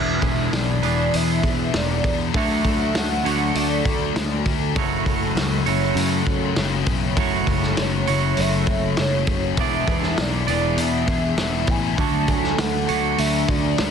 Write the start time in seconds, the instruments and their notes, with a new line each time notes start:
Already playing: picked electric bass E1, distorted electric guitar E2 B2 E3, clean electric guitar E3 B3 D4 G#4 B4, twelve-string acoustic guitar B3, soft synth lead E5
0.22 picked electric bass E1, twelve-string acoustic guitar B3, kick, open hi-hat
0.52 picked electric bass B1, twelve-string acoustic guitar G#4, soft synth lead D5, snare, open hi-hat
0.82 picked electric bass E1, distorted electric guitar E2 B2 E3, clean electric guitar E3 B3 D4 G#4 B4, twelve-string acoustic guitar D4, open hi-hat
1.14 picked electric bass E2, twelve-string acoustic guitar B3, soft synth lead E5, open hi-hat
1.43 picked electric bass E2, twelve-string acoustic guitar G#4, kick, open hi-hat
1.72 picked electric bass E1, distorted electric guitar E2 B2 E3, twelve-string acoustic guitar D4, soft synth lead D5, snare, open hi-hat
2.04 picked electric bass E2, twelve-string acoustic guitar B3, kick, open hi-hat
2.34 picked electric bass D2, distorted electric guitar D3 A3 D4, clean electric guitar D3 F#3 A3 D4 F#4 C#5, twelve-string acoustic guitar A3, soft synth lead E5, kick, open hi-hat
2.65 picked electric bass D2, twelve-string acoustic guitar A3, kick, open hi-hat
2.95 picked electric bass D2, soft synth lead F#5, snare, open hi-hat
3.24 picked electric bass D2, distorted electric guitar D3 A3 D4, clean electric guitar A3 D4 F#4 C#5, open hi-hat
3.28 clean electric guitar D3 F#3
3.55 picked electric bass D2, twelve-string acoustic guitar A3, soft synth lead D5, open hi-hat
3.85 picked electric bass D2, twelve-string acoustic guitar F#4, kick, open hi-hat
4.14 picked electric bass D2, distorted electric guitar D3 A3 D4, snare, open hi-hat
4.46 picked electric bass D2, twelve-string acoustic guitar A3, kick, open hi-hat
4.75 picked electric bass F#1, distorted electric guitar F#2 C#3 F#3, twelve-string acoustic guitar E3, clean electric guitar F#3 A3 E4 F#4 C#5, kick, open hi-hat
5.06 picked electric bass F#1, twelve-string acoustic guitar A3, kick, open hi-hat
5.35 picked electric bass C#2, twelve-string acoustic guitar F#4, snare, open hi-hat
5.66 picked electric bass F#1, distorted electric guitar C#3 F#3, clean electric guitar A3 E4 F#4 C#5, twelve-string acoustic guitar C#4, open hi-hat
5.70 distorted electric guitar F#2, clean electric guitar F#3
5.95 picked electric bass F#2, twelve-string acoustic guitar A3, open hi-hat
6.26 picked electric bass F#2, twelve-string acoustic guitar F#4, kick, open hi-hat
6.56 picked electric bass F#1, distorted electric guitar F#2 C#3, twelve-string acoustic guitar C#4, snare, open hi-hat
6.61 distorted electric guitar F#3
6.86 picked electric bass B1, twelve-string acoustic guitar E3, kick, open hi-hat
7.16 picked electric bass F#1, distorted electric guitar F#2 C#3, twelve-string acoustic guitar E3, clean electric guitar F#3 A3 E4 F#4 C#5, kick, open hi-hat
7.21 distorted electric guitar F#3
7.47 picked electric bass F#1, twelve-string acoustic guitar A3, kick, open hi-hat
7.63 snare
7.77 picked electric bass F#1, twelve-string acoustic guitar F#4, snare, open hi-hat
7.82 soft synth lead C#5
8.06 picked electric bass F#1, distorted electric guitar C#3 F#3, clean electric guitar A3 E4 F#4 C#5, twelve-string acoustic guitar C#4, open hi-hat
8.10 distorted electric guitar F#2, clean electric guitar F#3
8.37 picked electric bass F#1, twelve-string acoustic guitar A3, soft synth lead E5, open hi-hat
8.67 picked electric bass F#1, twelve-string acoustic guitar F#4, kick, open hi-hat
8.97 picked electric bass F#1, distorted electric guitar F#2 C#3 F#3, twelve-string acoustic guitar C#4, soft synth lead C#5, snare, open hi-hat
9.27 picked electric bass F#1, twelve-string acoustic guitar E3, kick, open hi-hat
9.57 picked electric bass E1, distorted electric guitar E2 B2 E3, twelve-string acoustic guitar E3, clean electric guitar E3 B3 D4 G#4 D5, soft synth lead E5, kick, open hi-hat
9.87 picked electric bass E1, twelve-string acoustic guitar B3, kick, open hi-hat
10.03 snare
10.18 picked electric bass B1, twelve-string acoustic guitar G#4, soft synth lead D5, snare, open hi-hat
10.47 picked electric bass E1, distorted electric guitar E2 B2 E3, clean electric guitar E3 B3 D4 G#4 D5, twelve-string acoustic guitar D4, open hi-hat
10.77 picked electric bass E2, twelve-string acoustic guitar B3, soft synth lead E5, open hi-hat
11.07 picked electric bass E2, twelve-string acoustic guitar G#4, kick, open hi-hat
11.37 picked electric bass E1, distorted electric guitar E2 B2 E3, twelve-string acoustic guitar D4, snare, open hi-hat
11.67 picked electric bass A1, twelve-string acoustic guitar E3, soft synth lead G#5, kick, open hi-hat
11.96 picked electric bass D2, distorted electric guitar D3 A3 D4, clean electric guitar D3 F#3 A3 D4 F#4, twelve-string acoustic guitar A3, soft synth lead A5, kick, open hi-hat
12.01 clean electric guitar C#5
12.28 picked electric bass D2, twelve-string acoustic guitar A3, soft synth lead G#5, kick, open hi-hat
12.44 snare
12.58 picked electric bass D2, soft synth lead F#5, snare, open hi-hat
12.87 picked electric bass D2, distorted electric guitar D3 A3 D4, clean electric guitar A3 D4 F#4 C#5, open hi-hat
12.91 clean electric guitar D3 F#3
13.18 picked electric bass D2, twelve-string acoustic guitar A3, soft synth lead E5, open hi-hat
13.48 picked electric bass D2, twelve-string acoustic guitar F#4, soft synth lead D5, kick, open hi-hat
13.78 picked electric bass D2, distorted electric guitar D3 A3 D4, snare, open hi-hat